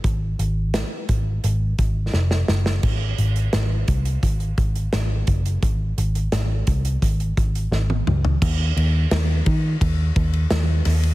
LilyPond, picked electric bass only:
\new Staff \with { instrumentName = "Picked electric bass" } { \clef bass \time 4/4 \key aes \major \tempo 4 = 86 aes,,8 aes,,8. r16 aes,,8 aes,,8 aes,,8 f,,8 ges,,8 | aes,,8 aes,,8 aes,,8 c,8 aes,,8 aes,,8 aes,,8 ges,,8 | aes,,8 aes,,8 aes,,8 c,8 aes,,8 aes,,8 aes,,8 des,8 | ees,8 ees,8 ees,8 ees8 ees,8 ees,8 ees,8 ees,8 | }